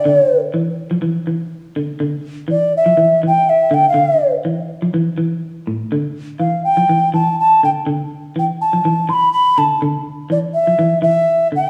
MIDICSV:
0, 0, Header, 1, 4, 480
1, 0, Start_track
1, 0, Tempo, 487409
1, 57, Time_signature, 4, 2, 24, 8
1, 11518, End_track
2, 0, Start_track
2, 0, Title_t, "Ocarina"
2, 0, Program_c, 0, 79
2, 0, Note_on_c, 0, 74, 82
2, 386, Note_off_c, 0, 74, 0
2, 2474, Note_on_c, 0, 74, 86
2, 2691, Note_off_c, 0, 74, 0
2, 2727, Note_on_c, 0, 76, 85
2, 3161, Note_off_c, 0, 76, 0
2, 3222, Note_on_c, 0, 79, 100
2, 3441, Note_on_c, 0, 76, 95
2, 3456, Note_off_c, 0, 79, 0
2, 3684, Note_on_c, 0, 79, 93
2, 3699, Note_off_c, 0, 76, 0
2, 3799, Note_off_c, 0, 79, 0
2, 3830, Note_on_c, 0, 77, 84
2, 4257, Note_off_c, 0, 77, 0
2, 6301, Note_on_c, 0, 77, 78
2, 6524, Note_off_c, 0, 77, 0
2, 6545, Note_on_c, 0, 79, 82
2, 6989, Note_off_c, 0, 79, 0
2, 7031, Note_on_c, 0, 81, 89
2, 7249, Note_off_c, 0, 81, 0
2, 7287, Note_on_c, 0, 81, 99
2, 7497, Note_off_c, 0, 81, 0
2, 7527, Note_on_c, 0, 79, 78
2, 7586, Note_off_c, 0, 79, 0
2, 8262, Note_on_c, 0, 79, 81
2, 8321, Note_off_c, 0, 79, 0
2, 8483, Note_on_c, 0, 81, 86
2, 8957, Note_on_c, 0, 84, 91
2, 8972, Note_off_c, 0, 81, 0
2, 8994, Note_on_c, 0, 83, 99
2, 9004, Note_off_c, 0, 84, 0
2, 9180, Note_off_c, 0, 83, 0
2, 9186, Note_on_c, 0, 83, 101
2, 9436, Note_on_c, 0, 81, 83
2, 9451, Note_off_c, 0, 83, 0
2, 9667, Note_off_c, 0, 81, 0
2, 10162, Note_on_c, 0, 74, 82
2, 10221, Note_off_c, 0, 74, 0
2, 10382, Note_on_c, 0, 76, 80
2, 10825, Note_off_c, 0, 76, 0
2, 10862, Note_on_c, 0, 76, 88
2, 11305, Note_off_c, 0, 76, 0
2, 11383, Note_on_c, 0, 79, 102
2, 11518, Note_off_c, 0, 79, 0
2, 11518, End_track
3, 0, Start_track
3, 0, Title_t, "Clean electric guitar"
3, 0, Program_c, 1, 27
3, 53, Note_on_c, 1, 50, 90
3, 198, Note_off_c, 1, 50, 0
3, 530, Note_on_c, 1, 52, 78
3, 676, Note_off_c, 1, 52, 0
3, 895, Note_on_c, 1, 53, 77
3, 966, Note_off_c, 1, 53, 0
3, 1003, Note_on_c, 1, 52, 77
3, 1152, Note_off_c, 1, 52, 0
3, 1252, Note_on_c, 1, 52, 74
3, 1398, Note_off_c, 1, 52, 0
3, 1735, Note_on_c, 1, 50, 82
3, 1880, Note_off_c, 1, 50, 0
3, 1971, Note_on_c, 1, 50, 96
3, 2117, Note_off_c, 1, 50, 0
3, 2441, Note_on_c, 1, 52, 76
3, 2590, Note_off_c, 1, 52, 0
3, 2816, Note_on_c, 1, 53, 72
3, 2887, Note_off_c, 1, 53, 0
3, 2928, Note_on_c, 1, 52, 83
3, 3075, Note_off_c, 1, 52, 0
3, 3183, Note_on_c, 1, 52, 72
3, 3326, Note_off_c, 1, 52, 0
3, 3652, Note_on_c, 1, 50, 83
3, 3799, Note_off_c, 1, 50, 0
3, 3881, Note_on_c, 1, 50, 85
3, 4030, Note_off_c, 1, 50, 0
3, 4381, Note_on_c, 1, 52, 74
3, 4525, Note_off_c, 1, 52, 0
3, 4749, Note_on_c, 1, 53, 72
3, 4816, Note_off_c, 1, 53, 0
3, 4863, Note_on_c, 1, 52, 88
3, 5006, Note_off_c, 1, 52, 0
3, 5097, Note_on_c, 1, 52, 72
3, 5242, Note_off_c, 1, 52, 0
3, 5587, Note_on_c, 1, 45, 74
3, 5729, Note_off_c, 1, 45, 0
3, 5830, Note_on_c, 1, 50, 89
3, 5971, Note_off_c, 1, 50, 0
3, 6299, Note_on_c, 1, 52, 68
3, 6443, Note_off_c, 1, 52, 0
3, 6668, Note_on_c, 1, 53, 73
3, 6735, Note_off_c, 1, 53, 0
3, 6790, Note_on_c, 1, 52, 86
3, 6931, Note_off_c, 1, 52, 0
3, 7028, Note_on_c, 1, 52, 74
3, 7170, Note_off_c, 1, 52, 0
3, 7517, Note_on_c, 1, 50, 73
3, 7656, Note_off_c, 1, 50, 0
3, 7745, Note_on_c, 1, 50, 86
3, 7887, Note_off_c, 1, 50, 0
3, 8231, Note_on_c, 1, 52, 75
3, 8371, Note_off_c, 1, 52, 0
3, 8599, Note_on_c, 1, 53, 71
3, 8663, Note_off_c, 1, 53, 0
3, 8717, Note_on_c, 1, 52, 89
3, 8855, Note_off_c, 1, 52, 0
3, 9432, Note_on_c, 1, 50, 78
3, 9572, Note_off_c, 1, 50, 0
3, 9671, Note_on_c, 1, 50, 93
3, 9811, Note_off_c, 1, 50, 0
3, 10143, Note_on_c, 1, 52, 81
3, 10285, Note_off_c, 1, 52, 0
3, 10511, Note_on_c, 1, 53, 72
3, 10576, Note_off_c, 1, 53, 0
3, 10624, Note_on_c, 1, 52, 81
3, 10765, Note_off_c, 1, 52, 0
3, 10853, Note_on_c, 1, 52, 80
3, 10998, Note_off_c, 1, 52, 0
3, 11345, Note_on_c, 1, 50, 74
3, 11486, Note_off_c, 1, 50, 0
3, 11518, End_track
4, 0, Start_track
4, 0, Title_t, "Muted clean electric guitar strokes"
4, 8950, Note_on_c, 9, 29, 78
4, 9048, Note_off_c, 9, 29, 0
4, 11518, End_track
0, 0, End_of_file